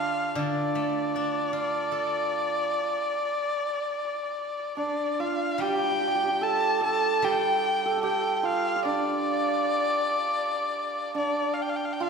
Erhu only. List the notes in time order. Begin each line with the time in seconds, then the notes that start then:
Already playing: F5
0.39 D5
4.77 D5
5.20 F5
5.61 G5
6.43 A5
6.84 A5
7.25 G5
8.03 G5
8.36 G5
8.45 F5
8.85 D5
11.17 D5
11.54 F5
11.61 G5
11.69 F5
11.76 G5
11.85 F5
11.93 G5
12.02 F5